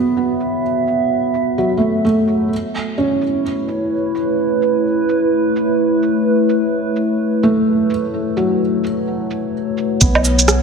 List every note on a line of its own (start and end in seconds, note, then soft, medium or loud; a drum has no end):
0.00 2.53 B3 medium
0.00 3.53 B3 medium
0.00 4.25 F#4 medium
0.00 2.51 C#5 medium
0.00 3.63 E5 medium
0.40 cabasa medium
0.87 cabasa medium
1.34 cabasa medium
1.58 2.03 F#3 medium
1.77 2.03 A3 soft
1.77 cabasa medium
2.05 2.50 A3 medium
2.28 cabasa medium
2.52 10.02 A3 medium
2.75 10.62 E4 medium
2.75 cabasa medium
2.98 3.43 C#4 medium
3.09 10.62 C#5 medium
3.21 cabasa medium
3.29 10.62 B4 medium
3.68 cabasa medium
4.15 cabasa medium
4.62 cabasa medium
5.09 cabasa medium
5.56 cabasa medium
6.03 cabasa medium
6.49 cabasa medium
6.96 cabasa medium
7.43 7.89 A3 medium
7.43 cabasa medium
7.90 cabasa medium
8.37 8.82 F#3 medium
8.37 cabasa medium
8.84 cabasa medium
9.31 cabasa medium
9.78 cabasa medium
10.01 10.62 B1 loud
10.01 10.62 B3 medium
10.01 10.47 B3 medium
10.01 kick loud
10.01 shaker medium
10.15 low woodblock medium
10.25 cabasa medium
10.30 10.62 F#5 medium
10.39 10.62 F#4 medium
10.39 shaker medium
10.48 cross-stick loud
10.48 shaker medium